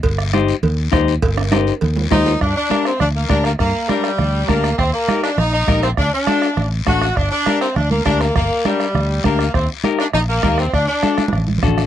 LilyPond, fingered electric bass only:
\new Staff \with { instrumentName = "Fingered electric bass" } { \clef bass \time 4/4 \key g \minor \tempo 4 = 202 g,,2 ees,4 ees,4 | g,,2 ees,4 ees,4 | g,8 r4. d,4 d,4 | g,8 r4. d,4 d,4 |
ees,8 r4. bes,,4 bes,,4 | d,8 r4. a,,4 a,,4 | g,,8 r4. d,4 d,4 | g,,8 r4. d,4 d,4 |
ees,8 r4. bes,,4 ees,4 | d,8 r4. a,,4 a,,4 | }